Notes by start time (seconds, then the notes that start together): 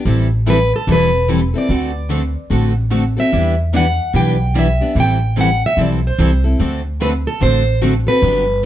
0.05 A1 E3 G3 C4 E4 A4
0.46 E3 G3 C4 E4 A4 B4
0.76 A4
0.87 E1 E3 G3 C4 E4 A4
0.92 B4
1.29 E3 G3 C4 E4 A4
1.54 C4 E4 A4 D5
1.69 D2 D3 A3 C4 F#4 A4
2.09 D3 A3 C4 F#4 A4
2.50 A1 D3 A3 C4 F#4 A4
2.91 D3 A3 C4 F#4 A4
3.17 C4 F#4 A4 E5
3.32 E2 E3 G3 B3 D4 E4 G4 B4
3.73 E3 G3 B3 D4 E4 G4 B4 F#5
4.14 B1 E3 G3 B3 D4 E4 G4 B4 G5
4.55 E3 G3 B3 D4 E4 G4 B4 E5
4.81 B3 D4 G4
4.95 A1 E3 G3 C4 E4 A4
5.00 G5
5.37 E3 G3 C4 E4 A4 F#5
5.66 E5
5.77 B1 E3 G3 C4 E4 A4
5.81 D5
6.07 C5
6.19 C2 E3 G3 C4 E4 A4
6.44 C4 E4 A4
6.59 D2 D3 A3 C4 F#4 A4
7.00 D3 A3 C4 F#4 A4 B4
7.27 A4
7.40 A1 D3 A3 C4 F#4 A4 C5
7.82 D3 A3 C4 F#4 A4
8.07 C4 F#4 A4 B4
8.22 G1 D3 F#3 B3 D4 G4